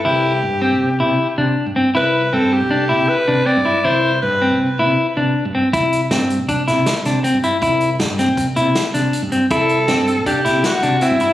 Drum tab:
HH |----------|----------|----------|xxxxxxxxxx|
SD |----------|----------|----------|--o--ooo--|
BD |----------|----------|----------|o---o-----|

HH |xxxxxxxxxx|xxxxxxxxxx|
SD |--oo--oo--|--o--oo---|
BD |o---o-----|o---o-----|